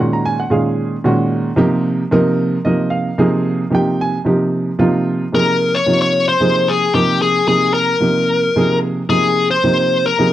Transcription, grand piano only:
0.00 0.42 A#2 medium
0.00 0.42 D#3 medium
0.00 0.42 G#3 medium
0.00 0.42 C#4 medium
0.00 0.42 F#4 medium
0.00 0.12 F#5 medium
0.13 0.25 A#5 medium
0.25 0.38 G#5 loud
0.40 0.52 F#5 medium
0.50 0.95 A#2 medium
0.50 0.95 D#3 medium
0.50 0.95 G#3 medium
0.50 0.96 C#4 medium
0.50 0.95 G#4 medium
0.50 0.67 F5 medium
1.04 1.49 A#2 medium
1.04 1.49 D#3 medium
1.04 1.49 G#3 medium
1.04 1.49 C#4 medium
1.04 1.50 F#4 loud
1.56 2.02 C3 loud
1.56 2.02 F3 medium
1.56 2.02 A#3 medium
1.56 2.02 D#4 medium
1.56 2.02 G4 loud
2.11 2.56 C3 loud
2.11 2.56 F3 medium
2.11 2.56 A#3 medium
2.11 2.56 D#4 medium
2.11 2.56 A#4 loud
2.65 3.09 C3 medium
2.65 3.10 F3 medium
2.65 3.10 A#3 medium
2.65 3.10 D#4 medium
2.65 3.10 A#4 medium
2.65 2.91 D#5 medium
2.90 3.67 F5 medium
3.18 3.63 C3 medium
3.18 3.63 F3 medium
3.18 3.63 A#3 medium
3.18 3.63 D#4 medium
3.18 3.63 G#4 loud
3.71 4.16 C3 medium
3.71 4.16 F3 medium
3.71 4.16 A#3 medium
3.71 4.16 D#4 medium
3.71 4.17 G4 medium
3.75 3.99 G5 loud
4.01 4.17 G#5 loud
4.25 4.70 C3 medium
4.25 4.70 F3 medium
4.25 4.70 A#3 medium
4.25 4.71 D#4 medium
4.25 4.71 G4 medium
4.79 5.24 C3 medium
4.79 5.24 F3 medium
4.79 5.24 A#3 medium
4.79 5.24 D#4 medium
4.79 5.24 F4 loud
5.32 5.77 C3 medium
5.32 5.78 F3 medium
5.32 5.78 A#3 medium
5.32 5.78 D#4 medium
5.32 5.78 G#4 medium
5.86 6.31 C3 medium
5.86 6.31 F3 medium
5.86 6.31 A#3 medium
5.86 6.32 D#4 medium
5.86 6.32 F4 medium
6.40 6.85 C3 medium
6.40 6.85 F3 medium
6.40 6.86 A#3 medium
6.40 6.86 D#4 medium
6.40 6.85 G#4 medium
6.94 7.39 C3 medium
6.94 7.39 F3 medium
6.94 7.39 A#3 medium
6.94 7.39 D#4 medium
6.94 7.39 A#4 medium
7.47 7.92 C3 medium
7.47 7.93 F3 medium
7.47 7.93 A#3 medium
7.47 7.93 D#4 medium
7.47 7.93 G#4 medium
8.00 8.46 C3 medium
8.00 8.46 F3 medium
8.00 8.46 A#3 medium
8.00 8.46 D#4 medium
8.00 8.47 G4 medium
8.56 9.01 C3 medium
8.56 9.01 F3 medium
8.56 9.01 A#3 medium
8.56 9.01 D#4 medium
8.56 9.01 G#4 medium
9.09 9.54 C3 medium
9.09 9.54 F3 medium
9.09 9.54 A#3 medium
9.09 9.54 D#4 medium
9.09 9.55 G#4 medium
9.64 10.08 C3 medium
9.64 10.08 F3 medium
9.64 10.08 A#3 medium
9.64 10.09 D#4 medium
9.64 10.09 G4 medium
10.18 10.33 C3 medium
10.18 10.33 F3 medium
10.18 10.33 A#3 medium
10.18 10.33 D#4 medium
10.18 10.33 G#4 medium

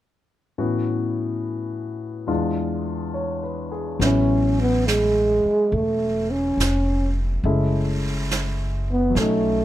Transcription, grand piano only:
0.58 2.29 A2 soft
0.58 2.26 E3 soft
0.58 2.29 B3 soft
0.58 2.29 C#4 soft
0.58 2.29 F#4 soft
2.27 3.99 E2 soft
2.27 3.99 E3 soft
2.27 3.99 G#3 soft
2.27 3.99 D4 soft
2.27 3.99 F4 soft
3.14 3.69 C#5 soft
3.43 3.88 B4 soft
3.72 4.16 G#4 soft
3.99 7.44 F#3 soft
3.99 7.44 B3 soft
3.99 7.44 C#4 soft
4.03 7.44 E4 soft
7.45 9.16 G#3 soft
7.45 9.13 A3 soft
7.45 9.16 C#4 soft
7.45 9.16 E4 soft
9.10 9.65 F#3 soft
9.15 9.65 A3 soft
9.15 9.65 C#4 soft
9.21 9.65 D#4 soft

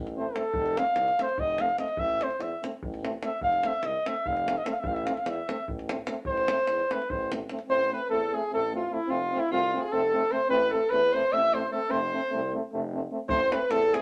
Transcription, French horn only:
0.17 0.25 C4 medium
0.36 0.43 C4 medium
0.77 0.85 C4 medium
1.19 1.27 C4 medium
1.59 1.67 C4 medium
1.79 1.86 C4 medium
2.21 2.28 C4 medium
2.63 2.71 C4 medium
3.04 3.11 C4 medium
3.23 3.30 C4 medium
3.64 3.72 C4 medium
4.06 4.14 C4 medium
4.48 4.55 C4 medium
4.65 4.72 C4 medium
5.07 5.15 C4 medium
5.49 5.57 C4 medium
5.89 5.97 C4 medium
6.08 6.16 C4 medium
6.49 6.57 C4 medium
6.92 6.99 C4 medium
7.32 7.40 C4 medium
7.50 7.58 C4 medium
7.69 7.78 C4 medium
7.92 8.00 C4 medium
8.11 8.20 C4 medium
8.33 8.40 C4 medium
8.52 8.60 C4 medium
8.73 8.80 C4 medium
8.90 8.98 C4 medium
9.08 9.18 C4 medium
9.33 9.40 C4 medium
9.51 9.61 C4 medium
9.74 9.82 C4 medium
9.93 10.01 C4 medium
10.14 10.21 C4 medium
10.31 10.39 C4 medium
10.49 10.58 C4 medium
10.72 10.80 C4 medium
10.92 11.01 C4 medium
11.15 11.22 C4 medium
11.34 11.42 C4 medium
11.55 11.62 C4 medium
11.73 11.80 C4 medium
11.90 11.99 C4 medium
12.14 12.21 C4 medium
12.32 12.41 C4 medium
12.55 12.63 C4 medium
12.74 12.82 C4 medium
12.94 13.01 C4 medium
13.12 13.19 C4 medium
13.29 13.39 C4 medium
13.53 13.60 C4 medium
13.71 13.80 C4 medium
13.94 14.01 C4 medium

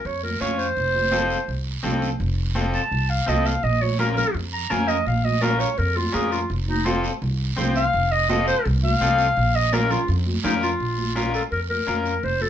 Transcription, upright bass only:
0.05 0.34 F2 loud
0.41 0.70 F2 medium
0.77 1.34 F1 loud
1.48 1.77 C2 medium
1.84 2.13 C2 medium
2.20 2.77 F1 loud
2.91 3.20 C2 loud
3.28 3.56 C2 medium
3.63 4.21 A#1 loud
4.35 4.63 F2 medium
4.71 5.00 F2 medium
5.06 5.64 A#1 medium
5.78 6.07 F2 loud
6.14 6.43 F2 loud
6.50 7.07 F1 loud
7.22 7.51 C2 loud
7.58 7.87 C2 medium
7.94 8.51 F1 loud
8.66 8.94 C2 loud
9.01 9.30 C2 medium
9.37 9.94 A#1 loud
10.08 10.37 F2 loud
10.45 10.73 F2 loud
10.80 11.38 A#1 medium
11.52 11.81 F2 medium
11.88 12.17 F2 medium
12.23 12.49 F1 medium

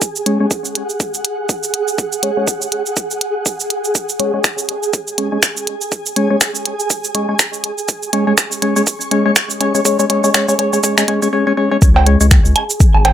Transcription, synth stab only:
0.26 0.38 G#3 medium
0.26 0.38 C#4 medium
0.26 0.38 C#5 loud
0.40 0.46 G#3 loud
0.40 0.46 C#4 medium
0.40 0.46 C#5 loud
2.23 2.31 G#3 medium
2.23 2.31 C#4 medium
2.23 2.31 C#5 medium
2.37 2.46 G#3 medium
2.37 2.46 C#4 medium
2.37 2.46 C#5 medium
4.20 4.32 G#3 medium
4.20 4.32 C#4 medium
4.20 4.32 C#5 medium
4.34 4.40 G#3 medium
4.34 4.40 C#4 medium
4.34 4.40 C#5 loud
5.18 5.30 G#3 medium
5.18 5.30 C#4 medium
5.18 5.30 C#5 medium
5.32 5.38 G#3 medium
5.32 5.38 C#4 medium
5.32 5.38 C#5 loud
6.16 6.28 G#3 medium
6.16 6.28 C#4 medium
6.16 6.28 C#5 medium
6.30 6.36 G#3 medium
6.30 6.36 C#4 medium
6.30 6.36 C#5 loud
7.15 7.27 G#3 medium
7.15 7.27 C#4 medium
7.15 7.27 C#5 medium
7.29 7.35 G#3 medium
7.29 7.35 C#4 medium
7.29 7.35 C#5 loud
8.13 8.25 G#3 medium
8.13 8.25 C#4 medium
8.13 8.25 C#5 loud
8.27 8.33 G#3 loud
8.27 8.33 C#4 medium
8.27 8.33 C#5 loud
8.62 8.74 G#3 medium
8.62 8.74 C#4 medium
8.62 8.74 C#5 medium
8.76 8.82 G#3 loud
8.76 8.82 C#4 medium
8.76 8.82 C#5 loud
9.11 9.23 G#3 medium
9.11 9.23 C#4 medium
9.11 9.23 C#5 medium
9.26 9.31 G#3 loud
9.26 9.31 C#4 medium
9.26 9.31 C#5 loud
9.61 9.73 G#3 medium
9.61 9.73 C#4 medium
9.61 9.73 C#5 loud
9.75 9.81 G#3 loud
9.75 9.81 C#4 medium
9.75 9.81 C#5 loud
9.85 9.97 G#3 medium
9.85 9.97 C#4 medium
9.85 9.97 C#5 loud
9.99 10.05 G#3 loud
9.99 10.05 C#4 medium
9.99 10.05 C#5 loud
10.10 10.22 G#3 medium
10.10 10.22 C#4 medium
10.10 10.22 C#5 loud
10.24 10.30 G#3 loud
10.24 10.30 C#4 medium
10.24 10.30 C#5 loud
10.34 10.46 G#3 medium
10.34 10.46 C#4 medium
10.34 10.46 C#5 loud
10.48 10.54 G#3 loud
10.48 10.54 C#4 medium
10.48 10.54 C#5 loud
10.59 10.71 G#3 medium
10.59 10.71 C#4 medium
10.59 10.71 C#5 loud
10.73 10.79 G#3 loud
10.73 10.79 C#4 medium
10.73 10.79 C#5 loud
10.84 10.96 G#3 medium
10.84 10.96 C#4 medium
10.84 10.96 C#5 loud
10.98 11.04 G#3 loud
10.98 11.04 C#4 medium
10.98 11.04 C#5 loud
11.08 11.20 G#3 medium
11.08 11.20 C#4 medium
11.08 11.20 C#5 loud
11.22 11.28 G#3 loud
11.22 11.28 C#4 medium
11.22 11.28 C#5 loud
11.33 11.45 G#3 medium
11.33 11.45 C#4 medium
11.33 11.45 C#5 loud
11.47 11.53 G#3 loud
11.47 11.53 C#4 medium
11.47 11.53 C#5 loud
11.57 11.69 G#3 medium
11.57 11.69 C#4 medium
11.57 11.69 C#5 loud
11.71 11.77 G#3 loud
11.71 11.77 C#4 loud
11.71 11.77 C#5 loud
12.06 12.19 G#3 medium
12.06 12.19 C#4 medium
12.06 12.19 C#5 medium
12.21 12.27 G#3 loud
12.21 12.27 C#4 medium
12.21 12.27 C#5 loud

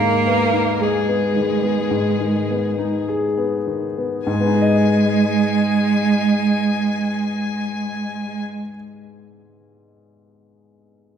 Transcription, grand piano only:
0.00 1.88 G#2 soft
0.00 0.42 D#3 soft
0.27 0.70 B3 soft
0.52 0.97 D#4 soft
0.81 1.25 G#4 soft
1.08 1.53 B3 soft
1.36 1.81 D#3 soft
1.63 2.09 B3 soft
1.91 4.22 G#2 soft
2.20 2.67 D#3 soft
2.50 2.97 B3 soft
2.78 3.26 D#4 soft
3.08 3.56 G#4 soft
3.37 3.86 B3 soft
3.67 4.15 D#3 soft
3.98 4.27 B3 soft
4.27 8.41 G#2 medium
4.33 8.47 G#3 soft
4.40 8.54 B3 soft
4.47 8.61 D#4 soft
4.54 8.68 G#4 soft
4.62 8.76 D#5 soft

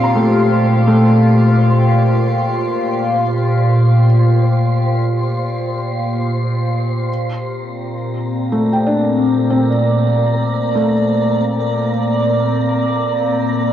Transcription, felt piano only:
0.00 1.04 C4 medium
0.00 7.11 D4 medium
0.00 3.20 A#5 soft
0.15 0.86 A3 medium
0.87 4.04 A3 medium
8.52 10.74 A3 medium
8.73 11.88 G5 soft
8.87 9.66 D4 medium
9.50 10.92 C4 medium
10.75 13.73 A3 medium

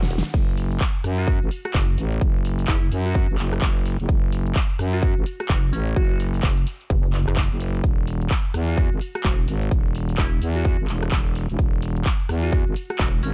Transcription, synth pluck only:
1.18 1.35 F#4 medium
1.65 1.82 F#4 medium
2.68 2.88 E4 medium
3.06 3.12 F#4 medium
3.15 3.24 F#4 medium
4.93 5.10 F#4 medium
5.40 5.57 F#4 medium
5.73 5.92 C#4 medium
5.96 6.05 F#4 medium
6.10 6.16 F#4 medium
8.68 8.85 F#4 medium
9.15 9.32 F#4 medium
10.18 10.38 E4 medium
10.56 10.62 F#4 medium
10.65 10.74 F#4 medium
12.43 12.60 F#4 medium
12.90 13.07 F#4 medium
13.23 13.34 C#4 medium

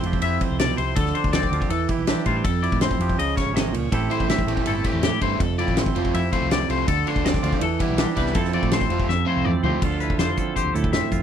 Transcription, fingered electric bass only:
0.03 0.19 F1 medium
0.21 0.37 F2 loud
0.50 0.74 C2 medium
0.78 0.93 C2 medium
0.96 1.12 D2 medium
1.24 1.47 D2 medium
1.51 1.59 D2 medium
1.69 1.85 E2 loud
1.97 2.13 B1 medium
2.26 2.41 A2 medium
2.44 2.67 F2 medium
2.72 2.95 A2 medium
2.99 3.15 F2 medium
3.18 3.33 C#2 medium
3.45 3.73 G#1 medium
3.72 3.88 C#2 medium
3.92 4.08 A1 medium
4.20 4.43 A1 medium
4.46 4.54 A1 medium
4.65 4.81 G1 medium
4.93 5.09 E2 medium
5.21 5.37 G1 medium
5.39 5.62 F1 medium
5.68 5.90 A1 medium
5.95 6.11 F1 medium
6.14 6.29 F2 loud
6.41 6.64 C2 medium
6.69 6.84 C2 medium
6.88 7.03 D2 medium
7.16 7.38 D2 medium
7.43 7.51 D2 medium
7.61 7.76 E2 loud
7.89 8.04 B1 medium
8.17 8.32 C2 medium
8.35 8.58 F2 medium
8.63 8.86 A2 medium
8.89 9.05 F2 medium
9.08 9.24 F2 loud
9.36 9.44 C2 medium
9.45 9.62 E2 medium
9.64 9.81 D2 medium
9.81 10.13 D2 medium
10.18 10.34 F2 medium
10.65 10.73 D2 medium
10.74 10.92 D2 medium
10.92 11.00 F2 medium
11.12 11.22 F2 medium

